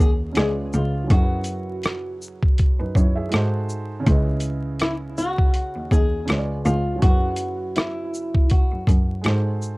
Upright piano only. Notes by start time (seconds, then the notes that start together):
Already playing: C#3 C#4 E4 B4 D#5
0.33 C#3 C#4 F4
0.37 B4 D5
1.04 F#3 C#4
1.10 E4 G#4
1.17 A#4
1.23 B4
2.79 D#4 B4
2.95 E4 C#5
3.16 G#4 E5
3.29 G#3 D#4 F#4
3.34 A4 C5
4.00 C#3 C#4
4.06 E4 B4
4.12 D#5
6.25 C#3 C#4 F4
6.30 B4 C#5
6.38 D5
6.96 F#3 C#4
7.02 E4 G#4
7.08 B4
9.21 G#3 D#4 F#4
9.26 A4 C5